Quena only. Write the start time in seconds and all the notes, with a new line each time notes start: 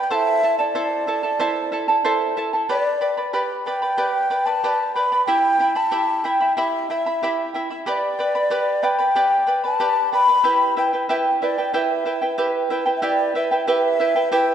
0.03 G5
0.11 E5 F#5
0.59 D5
2.70 D5
3.65 G5
4.46 A5
4.95 B5
5.26 G5
5.76 A5
6.25 G5
6.56 E5
6.89 E5
7.88 D5
8.84 G5
9.66 A5
10.14 B5
10.78 G5
11.09 E5
11.42 D5
11.74 E5
12.97 E5
13.04 D5
13.36 E5
13.69 E5
14.33 G5